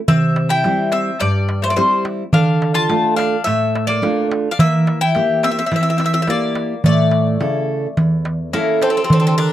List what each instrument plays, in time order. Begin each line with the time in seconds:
0.08 steel-string acoustic guitar C3, mandolin C4, bouzouki E5, darbuka dum
0.36 darbuka tek
0.49 mandolin E4, bouzouki G5
0.64 steel-string acoustic guitar G3 C4 E4, darbuka tek
0.78 darbuka tek
0.92 mandolin C4, bouzouki E5, darbuka tek
1.20 steel-string acoustic guitar G2, mandolin G3, bouzouki D5, darbuka tek
1.49 darbuka tek
1.62 mandolin A3, bouzouki C5
1.70 mandolin A#3, bouzouki D5
1.76 mandolin G3, steel-string acoustic guitar G3 C4 E4, bouzouki C5, darbuka tek
2.05 darbuka tek
2.33 steel-string acoustic guitar D3, mandolin D4, bouzouki F5, darbuka dum
2.62 darbuka tek
2.74 mandolin F4, bouzouki A5
2.89 steel-string acoustic guitar A3 D4 F4, darbuka tek
3.04 darbuka tek
3.16 mandolin D4, bouzouki F5, darbuka tek
3.44 steel-string acoustic guitar A2, mandolin A3, bouzouki E5, darbuka tek
3.75 darbuka tek
3.87 mandolin A#3, bouzouki D5
4.02 steel-string acoustic guitar A3 D4 F4, darbuka tek
4.31 darbuka tek
4.51 mandolin D4, bouzouki F5
4.59 steel-string acoustic guitar E3, mandolin A#3, bouzouki E5, darbuka dum
4.87 darbuka tek
5.01 mandolin E4, bouzouki G5
5.15 steel-string acoustic guitar A#3 E4 G4, darbuka tek
5.30 darbuka tek
5.43 mandolin C4, bouzouki E5, darbuka tek
5.51 mandolin C4, bouzouki E5
5.58 mandolin C4, bouzouki E5
5.66 mandolin C4, bouzouki E5
5.71 steel-string acoustic guitar E3, mandolin C4, darbuka tek
5.76 bouzouki E5
5.81 mandolin C4, bouzouki E5
5.89 mandolin C4, bouzouki E5
5.97 mandolin C4, bouzouki E5, darbuka tek
6.04 mandolin C4, bouzouki E5
6.13 mandolin C4, bouzouki E5
6.22 mandolin C4, bouzouki E5
6.27 steel-string acoustic guitar A#3 E4 G4, mandolin A#3, bouzouki D5, darbuka tek
6.55 darbuka tek
6.84 steel-string acoustic guitar A2, mandolin A3, bouzouki D5, darbuka dum
7.11 darbuka tek
7.27 darbuka tek
7.40 steel-string acoustic guitar C#3 E4 A4, darbuka tek
7.97 steel-string acoustic guitar E2, darbuka tek, darbuka dum
8.25 darbuka tek
8.53 bouzouki A#3, steel-string acoustic guitar C#4 E4 A4, mandolin E4, darbuka tek
8.68 darbuka tek
8.82 bouzouki C4, mandolin A4, darbuka tek
8.90 bouzouki C4, mandolin A4
8.97 bouzouki C4, mandolin A4
9.04 bouzouki C4, mandolin A4
9.10 steel-string acoustic guitar D3, bouzouki C4, mandolin A4, darbuka dum
9.20 bouzouki C4, mandolin A4
9.27 bouzouki C4, mandolin A4
9.38 bouzouki D4, mandolin A#4, darbuka tek